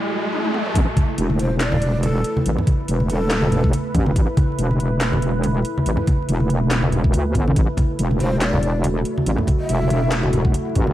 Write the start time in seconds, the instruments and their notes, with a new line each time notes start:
Already playing: ambient pad A3 E4 F#4, riser
0.33 high tom
0.45 high tom
0.54 mid tom
0.66 mid tom
0.75 wobble bass A1, ambient pad A3 E4 B4, kick, closed hi-hat
0.96 kick, closed hi-hat, high conga
1.18 wobble bass E1, closed hi-hat
1.30 high conga
1.39 wobble bass E1, ney C5, closed hi-hat
1.60 ney D5, snare, clap, closed hi-hat
1.72 high conga, low conga
1.82 closed hi-hat
2.03 ney A4, closed hi-hat, high conga
2.24 closed hi-hat
2.37 high conga
2.46 wobble bass A1, closed hi-hat
2.58 low conga
2.67 kick, closed hi-hat, high conga
2.88 wobble bass E1, closed hi-hat
3.00 high conga
3.10 wobble bass E1, ney A4, closed hi-hat
3.31 snare, clap, closed hi-hat
3.42 high conga
3.52 closed hi-hat, low conga
3.64 kick
3.73 closed hi-hat, high conga
3.94 wobble bass A1, kick, closed hi-hat, low conga
4.06 wobble bass E1, high conga
4.16 wobble bass A1, kick, closed hi-hat
4.37 kick, closed hi-hat, high conga
4.58 wobble bass E1, closed hi-hat
4.71 high conga
4.80 wobble bass E1, closed hi-hat
5.01 snare, clap, closed hi-hat
5.13 high conga, low conga
5.22 closed hi-hat
5.44 closed hi-hat, high conga
5.65 closed hi-hat
5.78 high conga
5.86 wobble bass A1, closed hi-hat
5.97 low conga
6.07 kick, closed hi-hat, high conga
6.29 wobble bass E1, closed hi-hat
6.40 high conga
6.50 wobble bass E1, closed hi-hat
6.71 snare, clap, closed hi-hat
6.82 high conga
6.92 closed hi-hat, low conga
7.04 kick
7.13 wobble bass D2, closed hi-hat, high conga
7.34 wobble bass G1, kick, closed hi-hat, low conga
7.47 wobble bass A1, high conga
7.56 wobble bass A1, ambient pad F#4, kick, closed hi-hat
7.77 kick, closed hi-hat, high conga
7.99 wobble bass E1, closed hi-hat
8.11 high conga
8.20 wobble bass E1, ney C5, closed hi-hat
8.41 ney D5, snare, clap, closed hi-hat
8.53 high conga, low conga
8.63 closed hi-hat
8.84 closed hi-hat, high conga
9.05 closed hi-hat
9.18 high conga
9.26 wobble bass A1, closed hi-hat
9.38 low conga
9.47 kick, closed hi-hat, high conga
9.60 ney E5
9.69 wobble bass E1, closed hi-hat
9.82 high conga
9.90 wobble bass E1, closed hi-hat
10.12 snare, clap, closed hi-hat
10.23 high conga
10.33 closed hi-hat, low conga
10.45 kick
10.54 closed hi-hat, high conga
10.75 wobble bass A1, kick, closed hi-hat, low conga
10.87 wobble bass E1, high conga